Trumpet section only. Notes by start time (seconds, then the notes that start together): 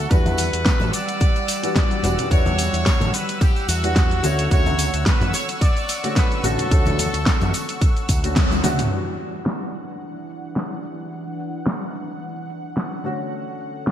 0.10 B4
0.93 D5
1.76 D5
2.31 C#5
3.14 B4
3.41 G4
3.69 F#4
4.24 C#5
4.52 C#5
5.06 B4
5.34 C#5
5.62 D5
6.17 B4
6.45 A4